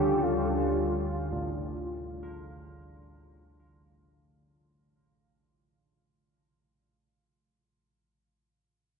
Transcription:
Already playing: D2 D3 G3 C#4 F4 G4
0.23 F4
1.32 A2
2.23 F4

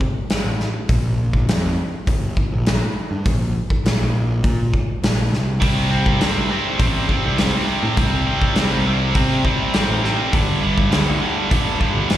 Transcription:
0.01 kick
0.30 snare, open hi-hat
0.45 A1
0.60 snare
0.89 A#1, kick, open hi-hat
1.33 kick
1.48 F2, snare, open hi-hat
2.07 G1, kick, open hi-hat
2.37 kick
2.52 A#1
2.66 snare, open hi-hat
3.11 G2
3.26 A#1, kick, open hi-hat
3.70 kick
3.85 A#1, snare, open hi-hat
4.44 A#2, kick, open hi-hat
4.74 kick
5.03 A#1, snare, open hi-hat
5.32 C2, snare
5.61 C2 C3 G3 C4, kick, open hi-hat
5.90 C3 G3 C4
6.06 kick
6.21 G2 C3 G3 C4, snare, open hi-hat
6.50 C3 G3 C4
6.79 A1 C3 G3 C4, kick, open hi-hat
7.08 C3 G3 C4, kick
7.25 C2
7.38 C3 G3 C4, snare, open hi-hat
7.67 C3 G3 C4
7.83 A2
7.97 C2 C3 G3 C4, kick, open hi-hat
8.26 C3 G3 C4
8.42 kick
8.55 C2 C3 G3 C4, snare, open hi-hat
8.86 C3 G3 C4
9.15 C3 G3 C4, kick, open hi-hat
9.44 C3 G3 C4, kick
9.73 C3 G3 C4, snare, open hi-hat
9.89 A1
10.03 C3 G3 C4, snare
10.31 G1 G2 D3 G3, kick, open hi-hat
10.62 G2 D3 G3
10.78 kick
10.91 D2 G2 D3 G3, snare, open hi-hat
11.20 G2 D3 G3
11.51 E1 G2 D3 G3, kick, open hi-hat
11.80 G2 D3 G3, kick
11.95 G1
12.09 G2 D3 G3, snare, open hi-hat

